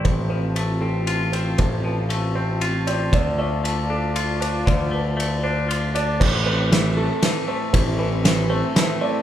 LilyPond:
<<
  \new Staff \with { instrumentName = "Felt piano" } { \time 3/4 \key a \minor \tempo 4 = 117 c''8 c''4 a'4 c''8 | c''8 b'4 c''4 d''8 | d''8 d''4 a'4 c''8 | c''8 b'4 c''4 d''8 |
c''8 c''4 a'4 c''8 | c''8 b'4 c''4 d''8 | }
  \new Staff \with { instrumentName = "Analog synth pad" } { \time 3/4 \key a \minor <c' f' a''>2.~ | <c' f' a''>2. | <f' d'' a''>2.~ | <f' d'' a''>2. |
<a c' e'>2.~ | <a c' e'>2. | }
  \new Staff \with { instrumentName = "Clean electric guitar" } { \time 3/4 \key a \minor a,8 f8 a8 c'8 f'8 c'8 | a,8 f8 a8 c'8 f'8 c'8 | d8 a8 a8 d'8 f'8 d'8 | d8 a8 a8 d'8 f'8 d'8 |
a,8 e8 e8 a8 e8 a8 | a,8 e8 e8 a8 e8 a8 | }
  \new Staff \with { instrumentName = "Picked electric bass" } { \clef bass \time 3/4 \key a \minor a,,2. | a,,2. | d,2. | d,2. |
a,,2 r4 | a,,2 r4 | }
  \new DrumStaff \with { instrumentName = "Drums" } \drummode { \time 3/4 <bd cymr>4 cymr4 cymr8 cymr8 | <bd cymr>4 cymr4 cymr8 cymr8 | <bd cymr>4 cymr4 cymr8 cymr8 | <bd cymr>4 cymr4 cymr8 cymr8 |
<cymc bd>4 <cymr sn>4 <cymr sn>4 | <bd cymr>4 <cymr sn>4 <cymr sn>4 | }
>>